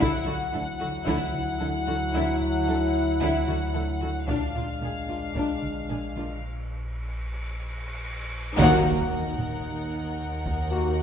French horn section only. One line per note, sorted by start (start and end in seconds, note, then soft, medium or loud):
0.00 4.24 F#3 medium
0.00 4.24 E4 medium
4.28 6.39 G#3 medium
4.28 6.39 D4 medium
8.57 9.07 A#3 loud
8.57 9.07 F#4 loud
10.70 11.03 A#3 medium
10.70 11.03 F#4 medium